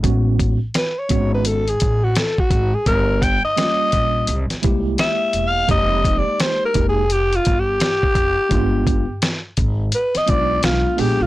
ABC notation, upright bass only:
X:1
M:4/4
L:1/16
Q:"Swing 16ths" 1/4=85
K:Gphr
V:1 name="Upright bass" clef=bass
=A,,,3 z3 ^G,,,4 A,,,2 z2 G,,, z | G,,,3 z3 B,,,2 C,, z C,,2 z2 =E,,,2 | F,,,3 z3 F,,,4 G,,,2 z2 F,,, z | G,,,3 z3 A,,,2 z2 =B,,,2 B,,, z _B,,, =B,,, |]